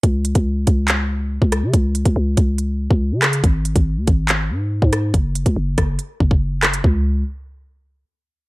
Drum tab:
HH |x-xx--x-x-----x-|x-xx--x-x-----xx|x-xx--x-x-----x-|x-xx--x-x-----xx|
CP |--------x-------|--------------x-|--------x-------|--------------x-|
SD |--------------r-|--------------r-|--------------r-|------r-------r-|
FT |----------------|----------------|----------------|----------------|
BD |o--o--o------o--|o--o--o----o----|o--o--o------o--|o--o--o---oo----|

HH |----------------|
CP |----------------|
SD |----------------|
FT |o---------------|
BD |o---------------|